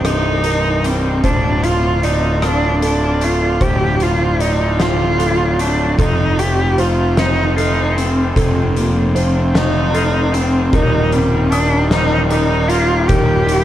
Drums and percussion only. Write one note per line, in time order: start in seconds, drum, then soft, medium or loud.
0.05 cross-stick medium
0.05 closed hi-hat medium
0.44 closed hi-hat medium
0.84 closed hi-hat soft
1.24 kick medium
1.24 closed hi-hat medium
1.64 closed hi-hat medium
2.03 closed hi-hat soft
2.42 cross-stick medium
2.42 closed hi-hat medium
2.82 closed hi-hat soft
3.21 closed hi-hat soft
3.61 kick medium
3.61 closed hi-hat medium
4.00 closed hi-hat soft
4.40 closed hi-hat soft
4.80 snare medium
4.80 closed hi-hat medium
5.20 closed hi-hat medium
5.59 closed hi-hat medium
5.99 kick medium
5.99 closed hi-hat medium
6.39 closed hi-hat medium
6.78 closed hi-hat soft
7.17 snare medium
7.17 closed hi-hat medium
7.58 closed hi-hat medium
7.98 closed hi-hat soft
8.36 kick medium
8.36 closed hi-hat medium
8.76 closed hi-hat medium
9.16 closed hi-hat soft
9.55 snare medium
9.55 closed hi-hat medium
9.95 closed hi-hat medium
10.34 closed hi-hat soft
10.73 kick medium
10.73 closed hi-hat medium
11.12 closed hi-hat soft
11.52 closed hi-hat medium
11.91 snare medium
11.91 closed hi-hat medium
12.31 closed hi-hat medium
12.70 closed hi-hat medium
13.09 kick medium
13.09 closed hi-hat medium
13.49 closed hi-hat medium